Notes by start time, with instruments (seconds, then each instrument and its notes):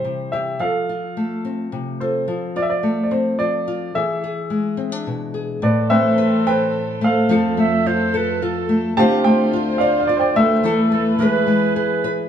Already playing: nylon-string guitar E3 G3 E4 G4, upright piano C5
0.04 nylon-string guitar C3
0.32 nylon-string guitar G4, upright piano E5
0.59 nylon-string guitar F3, upright piano A4 F5
0.89 nylon-string guitar F4
1.17 nylon-string guitar A3
1.45 nylon-string guitar C4
1.72 nylon-string guitar C3
2.00 nylon-string guitar F4, upright piano A4 C5
2.28 nylon-string guitar F3
2.56 nylon-string guitar F4, upright piano D5
2.62 upright piano E5
2.70 upright piano D5
2.83 nylon-string guitar A3
3.03 upright piano D5
3.11 nylon-string guitar C4, upright piano C5
3.39 nylon-string guitar F3, upright piano D5
3.68 nylon-string guitar F4
3.95 nylon-string guitar E3, upright piano G#4 E5
4.24 nylon-string guitar G#4
4.50 nylon-string guitar G#3
4.77 nylon-string guitar C4
4.92 nylon-string guitar D4
5.07 nylon-string guitar B2
5.34 nylon-string guitar G#4
5.62 string section A2 E3 C4 A4, nylon-string guitar A2, upright piano B4 D5
5.90 nylon-string guitar A3, felt piano C4, upright piano B4 C5 E5
6.18 nylon-string guitar B4
6.47 nylon-string guitar B4, upright piano B4 C5 G5
7.01 nylon-string guitar A3, upright piano F5
7.06 upright piano A4 C5
7.29 string section F2 F3 A4, nylon-string guitar F3 A3 C4 F4 A4
7.57 nylon-string guitar A3, clarinet E5
7.86 nylon-string guitar F4, clarinet C5
8.14 nylon-string guitar A4, clarinet B4
8.42 nylon-string guitar F4, clarinet A4
8.69 nylon-string guitar A3
8.97 string section D2 D3 F4 C5, nylon-string guitar D3 A3 C4 F4 C5, felt piano G4, upright piano C5 F5 A5
9.24 nylon-string guitar A3, upright piano C5 G5
9.53 nylon-string guitar F4
9.78 nylon-string guitar C5, felt piano D5, upright piano F5
10.00 felt piano F5
10.07 nylon-string guitar F4, upright piano D5
10.17 upright piano C5 D5, felt piano G5
10.36 nylon-string guitar A3, upright piano A4 B4 E5
10.63 string section E2 E3 A4 B4, nylon-string guitar E3 A3 E4 A4
10.92 nylon-string guitar A3, clarinet A4
11.19 nylon-string guitar E3 G#3 E4 G#4 B4, string section G#4, clarinet B4
11.47 nylon-string guitar G#3
11.76 nylon-string guitar G#4, clarinet B4
12.04 nylon-string guitar B4